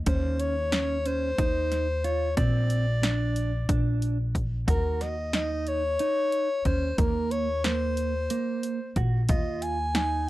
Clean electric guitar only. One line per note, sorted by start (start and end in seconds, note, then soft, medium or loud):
0.07 0.55 C#4 medium
0.73 0.97 C#4 medium
1.06 1.30 C#4 medium
1.39 1.87 D#4 medium
2.04 2.28 F4 medium
2.37 2.85 C4 medium
3.03 3.51 D4 medium
3.69 4.17 D4 medium
4.68 5.16 F#4 medium
5.34 5.82 D#4 medium
6.00 6.48 D#4 medium
6.66 6.90 C#4 medium
6.99 7.47 A#3 medium
7.65 8.13 A#3 medium
8.31 8.79 A#3 medium
8.97 9.21 F#4 medium
9.30 9.78 F4 medium
9.96 10.30 D#4 medium